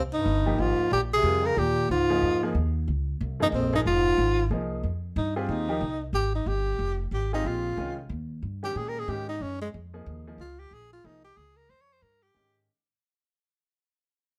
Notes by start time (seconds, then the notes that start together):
Already playing: C2
0.13 G2 D#4
0.26 G1
0.46 F3 A#3 D#4 G4
0.58 G#1 G#2 F4
0.79 muted upright bass stroke
0.91 A#1 A#2 G4
1.12 C3 G#4
1.23 F2 G3 C4 F4 A#4
1.43 C#3 A#4
1.56 D#2 A#2 G4
1.89 C#2 G#2 F4
2.09 F3 A#3 D#4 G#4
2.22 F2
2.43 F3 A#3 D#4 G#4
2.55 D#2
2.88 C#2
3.21 C2
3.40 G2 F3 A#3 D#4 G#4
3.52 A#1 F2 C4
3.73 G2 F3 A#3 D#4 G#4
3.85 F1 G#2 F4
4.18 G#1
4.50 C2 F3 A#3 D#4 G#4
4.83 F2
5.16 G2 D#4
5.36 C4 F4 G4 G#4
5.48 D#2 D#4
5.68 F3 A#3 D#4 G4
5.81 C2
6.13 G#1 G4
6.35 D#4
6.46 G1 G4
6.79 F1
7.11 G#1 G4
7.33 C4 D#4 F4 G4 G#4
7.44 A#1 F4
7.77 C2 D#3 G#3 C#4 F4
8.09 D#2
8.42 G2
8.63 D#3 G#3 C#4 G4
8.75 A#2 G#4
8.88 A#4
8.99 G#4
9.08 G#2 D#3 G#3 C#4 G4
9.29 D#4
9.40 F#2 C#4
9.62 G#3
9.74 F2
9.93 F3 A#3 D#4 G#4
10.06 D#2
10.27 F3 A#3 D#4 G#4
10.38 C#2 F4
10.59 G4
10.71 A#1 G#4
10.93 F4
11.04 C2 F3 A#3 D#4 G#4
11.24 G4
11.37 C#2 G#4
11.57 A#4
11.69 F2 C5
11.81 C#5
11.93 C5
12.02 G2 A#4
12.23 G4
12.34 G#2 D#3 G#3 C#4 G4